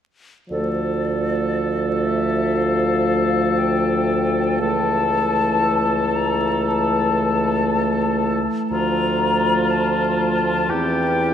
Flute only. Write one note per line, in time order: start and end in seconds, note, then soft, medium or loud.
0.49 2.07 D5 medium
2.06 2.59 E5 soft
2.57 3.60 F5 soft
3.58 4.61 G5 soft
4.60 6.17 A5 medium
6.15 6.66 A#5 soft
6.66 8.40 A5 medium
8.70 9.72 A#5 medium
9.71 10.71 A5 soft
10.70 11.34 G5 medium